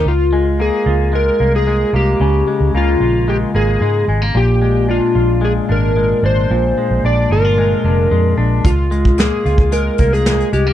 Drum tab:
HH |----------------|----------------|----------------|----------------|
SD |----------------|----------------|----------------|----------------|
BD |----------------|----------------|----------------|----------------|

HH |x-x-x-x-x-xxxxx-|
SD |----o-------o---|
BD |o--o---o--o-----|